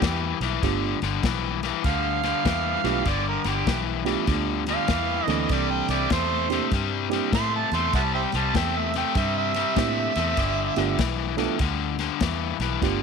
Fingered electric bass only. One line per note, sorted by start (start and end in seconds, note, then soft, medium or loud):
0.02 0.33 E2 medium
0.40 0.58 B1 medium
0.63 0.93 G1 medium
1.02 1.19 G1 medium
1.23 1.71 B1 medium
1.84 2.32 D2 medium
2.45 2.76 E2 medium
2.84 3.01 B1 medium
3.06 3.37 G1 medium
3.45 3.62 G1 medium
3.67 4.15 B1 medium
4.27 4.76 D2 medium
4.89 5.20 E2 medium
5.28 5.45 D2 medium
5.50 5.81 C2 medium
5.88 6.06 C2 medium
6.11 6.59 E2 medium
6.72 7.20 G2 medium
7.32 7.64 A2 medium
7.72 7.89 E2 medium
7.93 8.24 C2 medium
8.33 8.51 C2 medium
8.55 9.03 E2 medium
9.15 9.64 G2 medium
9.76 10.07 A2 medium
10.16 10.33 E2 medium
10.38 10.69 G1 medium
10.77 10.95 G1 medium
10.98 11.47 B1 medium
11.60 12.08 D2 medium
12.21 12.52 E2 medium
12.59 12.77 B1 medium
12.82 13.03 G1 medium